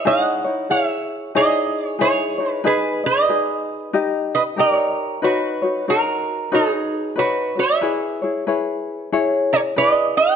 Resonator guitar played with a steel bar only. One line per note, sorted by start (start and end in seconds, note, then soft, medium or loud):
0.07 0.67 D#5 medium
0.07 0.70 F#5 medium
0.71 1.31 C#5 medium
0.71 1.36 E5 medium
1.36 1.97 G#4 medium
1.36 1.86 D#5 medium
1.86 2.01 C#5 medium
2.01 2.61 G#4 medium
2.01 2.51 C#5 medium
2.51 2.66 B4 medium
2.66 3.02 G#4 medium
2.66 3.05 B4 medium
3.06 4.31 B4 medium
3.06 4.33 D#5 medium
4.35 4.42 B4 medium
4.35 4.41 D#5 medium
4.59 5.20 A#4 medium
4.59 5.26 C#5 medium
5.24 5.84 F#4 medium
5.24 5.90 B4 medium
5.90 6.49 F#4 medium
5.90 6.55 A#4 medium
6.54 7.14 D#4 medium
6.54 7.19 G#4 medium
7.19 7.55 F#4 medium
7.19 7.59 B4 medium
7.59 9.48 C#5 medium
7.59 9.57 E5 medium
9.53 9.59 A#4 medium
9.53 9.60 C#5 medium
9.78 10.14 B4 medium
9.78 10.16 D#5 loud
10.17 10.36 D#5 medium
10.17 10.36 G5 loud